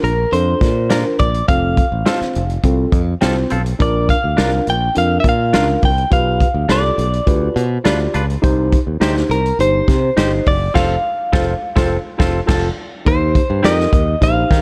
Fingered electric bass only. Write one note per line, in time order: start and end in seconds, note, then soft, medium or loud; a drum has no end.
0.03 0.24 A#1 medium
0.32 0.53 F2 medium
0.61 1.03 A#2 medium
1.20 1.41 A#1 medium
1.49 1.80 F1 loud
1.92 2.02 A1 medium
2.21 muted fingered electric bass stroke soft
2.36 2.57 F1 medium
2.64 2.85 C2 medium
2.92 3.13 F2 loud
3.23 3.43 C2 medium
3.52 3.72 B1 medium
3.80 4.11 A#1 loud
4.24 4.34 D2 medium
4.38 4.59 C2 medium
4.67 4.88 A#1 medium
4.97 5.17 F2 medium
5.24 5.55 A#2 loud
5.54 5.75 C#2 medium
5.83 6.04 C2 medium
6.11 6.43 B1 medium
6.54 6.65 D2 medium
6.69 6.90 C2 medium
6.98 7.19 B1 medium
7.27 7.48 D2 medium
7.56 7.77 B2 loud
7.85 8.06 D2 medium
8.14 8.35 C#2 medium
8.43 8.75 C2 loud
8.87 8.97 D#2 medium
9.01 9.22 D2 medium
9.29 9.51 C2 medium
9.59 9.80 G1 medium
9.88 10.09 C3 loud
10.17 10.38 G1 loud
10.47 10.67 F#1 medium
10.75 10.95 F1 medium
11.33 11.53 F1 medium
11.77 11.96 F1 loud
12.20 12.40 F1 loud
12.49 12.69 F1 medium
13.07 13.38 D#2 medium
13.50 13.61 G2 medium
13.64 13.86 F2 medium
13.93 14.14 D#2 medium
14.22 14.43 A#1 loud
14.51 14.62 D#3 loud